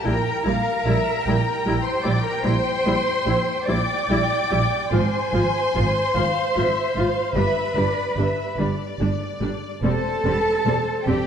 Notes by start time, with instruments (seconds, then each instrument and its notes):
0.04 double bass section A#1, viola section G3 E4, cello section A#4, violin section G5 A#5
0.45 double bass section A#1, viola section G3 E4, violin section F5
0.85 double bass section A#1, viola section G3 E4, violin section E5
1.26 double bass section A#1, viola section G3 E4, violin section G5
1.66 double bass section A#1, viola section G3 E4
1.84 cello section C5, violin section C6
2.04 double bass section A#1, viola section G3 E4, cello section D5, violin section D6
2.23 cello section A#4, violin section A#5
2.43 double bass section A#1, viola section G3 E4, cello section C5, violin section C6
2.85 double bass section A#1, viola section G3 E4
3.26 double bass section A#1, viola section G3 E4
3.66 double bass section A#1, viola section G3 E4, cello section D5, violin section G5 D6
4.09 double bass section A#1, viola section G3 E4
4.50 double bass section A#1, viola section G3 E4
4.92 double bass section G#1, viola section F3 F4, cello section C5, violin section G#5 C6
5.33 double bass section G#1, viola section F3 F4
5.75 double bass section G#1, viola section F3 F4
6.15 double bass section G#1, viola section F3 F4, violin section F5
6.56 double bass section G#1, viola section F3 F4, violin section E5
6.96 double bass section G#1, viola section F3 F4, violin section F5
7.35 double bass section G1, viola section G3 D4, cello section B4, violin section E5 B5
7.76 double bass section G1, viola section G3 D4, violin section D5
8.17 double bass section G1, viola section G3 D4, violin section E5
8.58 double bass section G1, viola section G3 D4, violin section D5
9.00 double bass section G1, viola section G3 D4
9.41 double bass section G1, viola section G3 D4
9.83 double bass section E1, viola section G3 C4, cello section A4, violin section C5 A5
10.25 double bass section E1, viola section G3 C4, violin section B4
10.66 double bass section E1, viola section G3 C4, violin section C5
11.06 double bass section E1, viola section G3 C4, cello section G4, violin section D5 G5